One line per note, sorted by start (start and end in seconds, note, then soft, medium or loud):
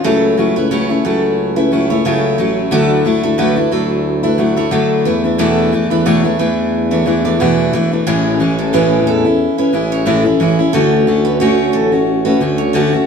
0.04 0.52 C#2 loud
0.04 0.38 C#3 medium
0.04 0.36 F#3 medium
0.04 0.37 A3 medium
0.04 0.38 C#4 medium
0.04 0.38 E4 medium
0.04 0.22 A4 medium
0.37 0.56 F#3 medium
0.37 0.57 A3 medium
0.37 0.56 C#4 medium
0.37 0.55 E4 medium
0.56 1.01 C#2 medium
0.56 0.71 A3 soft
0.56 0.70 C#4 medium
0.56 0.71 E4 medium
0.56 0.70 B4 medium
0.71 0.89 C#3 medium
0.71 0.90 F#3 medium
0.71 0.90 A3 medium
0.71 0.89 C#4 medium
0.71 0.88 E4 medium
0.71 1.03 C#5 medium
0.89 1.04 A3 soft
0.89 1.04 C#4 soft
0.89 1.04 E4 medium
1.05 2.35 C#2 loud
1.05 1.56 F#3 medium
1.05 1.57 A3 medium
1.05 1.56 C#4 medium
1.05 1.55 E4 medium
1.05 1.22 A4 medium
1.56 1.71 A3 soft
1.56 1.72 C#4 medium
1.56 1.72 E4 medium
1.56 1.71 B4 medium
1.72 1.90 F#3 medium
1.72 1.90 A3 medium
1.72 1.90 C#4 medium
1.72 1.89 E4 medium
1.90 2.05 A3 soft
1.90 2.05 C#4 soft
1.90 2.05 E4 medium
1.90 2.04 C#5 medium
2.05 2.39 C#3 medium
2.05 2.37 F#3 medium
2.05 2.38 A3 medium
2.05 2.39 C#4 medium
2.05 2.39 E4 medium
2.05 2.22 A4 medium
2.38 2.69 A1 medium
2.38 2.70 F#3 medium
2.38 2.71 A3 medium
2.38 2.72 C#4 medium
2.38 2.72 E4 medium
2.38 2.56 C#5 medium
2.71 3.20 D2 medium
2.71 3.05 D3 medium
2.71 3.04 F#3 medium
2.71 3.04 A3 medium
2.71 3.05 D4 medium
2.71 3.05 E4 medium
2.71 2.89 A4 loud
3.05 3.23 F#3 medium
3.05 3.24 A3 medium
3.05 3.23 D4 medium
3.05 3.22 E4 medium
3.23 3.69 D2 loud
3.23 3.37 A3 soft
3.23 3.37 D4 medium
3.23 3.38 E4 medium
3.23 3.38 A4 medium
3.38 3.57 D3 medium
3.38 3.57 F#3 medium
3.38 3.57 A3 medium
3.38 3.56 D4 medium
3.38 3.55 E4 medium
3.38 3.72 B4 medium
3.56 3.71 A3 soft
3.56 3.72 D4 medium
3.56 3.72 E4 medium
3.71 4.75 D2 loud
3.71 4.24 F#3 medium
3.71 4.24 A3 medium
3.71 4.23 D4 medium
3.71 4.22 E4 medium
3.71 3.90 A4 medium
4.23 4.37 A3 soft
4.23 4.38 D4 medium
4.23 4.39 E4 medium
4.23 4.38 B4 medium
4.38 4.57 F#3 medium
4.38 4.57 A3 medium
4.38 4.56 D4 medium
4.38 4.55 E4 medium
4.56 4.71 A3 soft
4.56 4.71 D4 soft
4.56 4.71 E4 medium
4.56 4.72 C#5 medium
4.71 5.05 D3 medium
4.71 5.05 F#3 medium
4.71 5.05 A3 medium
4.71 5.05 D4 medium
4.71 5.06 E4 medium
4.71 4.90 A4 medium
5.05 5.87 E2 loud
5.05 5.24 E3 medium
5.05 5.24 A3 medium
5.05 5.23 D4 medium
5.05 5.23 E4 medium
5.05 5.23 B4 medium
5.24 5.38 E3 soft
5.24 5.38 A3 soft
5.24 5.38 D4 soft
5.24 5.39 E4 medium
5.38 5.72 E2 medium
5.38 5.72 B2 medium
5.38 5.71 E3 medium
5.38 5.72 A3 medium
5.38 5.73 D4 medium
5.38 5.73 E4 medium
5.38 5.57 A4 loud
5.72 5.91 E3 medium
5.72 5.90 A3 medium
5.72 5.90 D4 medium
5.72 5.89 E4 medium
5.90 6.36 E2 medium
5.90 6.05 E3 soft
5.90 6.05 A3 medium
5.90 6.05 D4 medium
5.90 6.06 E4 medium
5.90 6.06 B4 medium
6.05 6.24 E2 medium
6.05 6.24 B2 medium
6.05 6.24 E3 medium
6.05 6.24 A3 medium
6.05 6.23 D4 medium
6.05 6.23 E4 medium
6.05 6.38 C#5 medium
6.24 6.38 E3 soft
6.24 6.38 A3 soft
6.24 6.39 D4 medium
6.24 6.39 E4 medium
6.39 7.69 E2 loud
6.39 6.91 E3 medium
6.39 6.91 A3 medium
6.39 6.90 D4 medium
6.39 6.90 E4 medium
6.39 6.57 B4 medium
6.91 7.04 E3 soft
6.91 7.05 A3 medium
6.91 7.06 D4 medium
6.91 7.06 E4 medium
6.91 7.06 C#5 medium
7.06 7.24 E3 medium
7.06 7.24 A3 medium
7.06 7.24 D4 medium
7.06 7.23 E4 medium
7.25 7.39 E3 soft
7.25 7.40 A3 soft
7.25 7.40 D4 medium
7.25 7.40 E4 medium
7.25 7.39 D5 medium
7.40 7.73 E2 medium
7.40 7.74 B2 medium
7.40 7.72 E3 medium
7.40 7.73 A3 medium
7.40 7.73 D4 medium
7.40 7.74 E4 medium
7.40 7.57 B4 medium
7.73 8.04 E1 medium
7.73 7.91 E3 medium
7.73 7.92 A3 medium
7.73 7.91 D4 medium
7.73 7.91 E4 medium
7.73 7.91 D5 medium
7.92 8.06 E3 soft
7.92 8.07 A3 soft
7.92 8.07 D4 soft
7.92 8.06 E4 soft
8.06 9.08 A1 loud
8.06 8.40 A2 medium
8.06 8.39 E3 medium
8.06 8.39 G#3 medium
8.06 8.40 C#4 medium
8.06 8.40 E4 loud
8.06 8.24 G#4 loud
8.40 8.72 E3 medium
8.40 8.73 G#3 medium
8.40 8.73 C#4 medium
8.40 8.73 E4 medium
8.59 8.74 A4 medium
8.73 9.25 A2 medium
8.73 9.25 E3 medium
8.73 9.25 G#3 medium
8.73 9.25 C#4 medium
8.73 9.23 E4 medium
8.73 9.05 B4 medium
9.07 9.47 E2 medium
9.07 9.24 A4 medium
9.25 9.59 G#3 soft
9.25 9.58 C#4 medium
9.25 9.57 E4 medium
9.58 9.72 G#3 medium
9.58 9.73 C#4 medium
9.58 9.73 E4 medium
9.58 9.73 B4 medium
9.73 10.36 A1 loud
9.73 10.05 E3 medium
9.73 10.05 G#3 medium
9.73 10.05 C#4 medium
9.73 10.06 E4 medium
9.92 10.06 C#5 medium
10.06 10.24 A2 medium
10.06 10.25 E3 medium
10.06 10.25 G#3 medium
10.06 10.25 C#4 medium
10.06 10.23 E4 medium
10.06 10.24 A4 medium
10.25 10.40 G#3 soft
10.25 10.40 C#4 medium
10.25 10.40 E4 medium
10.40 10.71 A1 medium
10.40 10.58 E3 medium
10.40 10.59 G#3 medium
10.40 10.59 C#4 medium
10.40 10.58 E4 medium
10.40 10.57 C#5 medium
10.59 10.74 G#3 soft
10.59 10.73 C#4 soft
10.59 10.74 E4 medium
10.73 11.69 D2 loud
10.73 11.06 D3 medium
10.73 11.07 A3 medium
10.73 11.07 C#4 medium
10.73 11.07 F#4 medium
10.73 10.91 A4 loud
11.07 11.40 D3 medium
11.07 11.40 A3 medium
11.07 11.40 C#4 medium
11.07 11.40 F#4 medium
11.25 11.39 B4 medium
11.40 11.92 D3 medium
11.40 11.92 A3 loud
11.40 11.92 C#4 medium
11.40 11.91 F#4 medium
11.40 11.72 C#5 medium
11.73 12.36 A1 medium
11.73 11.91 A4 medium
11.92 12.26 A3 soft
11.92 12.25 C#4 soft
11.92 12.24 F#4 medium
12.25 12.40 A3 soft
12.25 12.41 C#4 medium
12.25 12.40 F#4 medium
12.25 12.39 B4 medium
12.40 13.03 D2 loud
12.40 12.73 D3 medium
12.40 12.73 A3 medium
12.40 12.74 C#4 medium
12.40 12.74 F#4 medium
12.58 12.73 C#5 medium
12.73 12.92 D3 medium
12.73 12.92 A3 medium
12.73 12.92 C#4 loud
12.73 12.91 F#4 loud
12.73 12.91 A4 medium
12.92 13.06 A3 medium
12.92 13.06 C#4 medium
12.92 13.06 F#4 medium